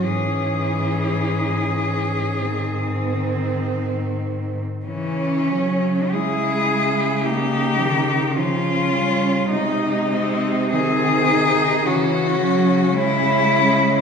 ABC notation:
X:1
M:4/4
L:1/8
Q:1/4=51
K:C#m
V:1 name="Cello"
G6 z2 | C2 G2 =G2 ^E2 | D2 G2 F2 E2 |]
V:2 name="Cello"
C4 ^B,4 | C2 E E D2 C2 | D ^B, B, D C2 C2 |]
V:3 name="Cello" clef=bass
E,4 D,4 | E, F, G,2 ^A, D, ^E, =G, | G,2 D,2 E, F, G,2 |]
V:4 name="Cello" clef=bass
G,,8 | C,8 | ^B,,4 C,4 |]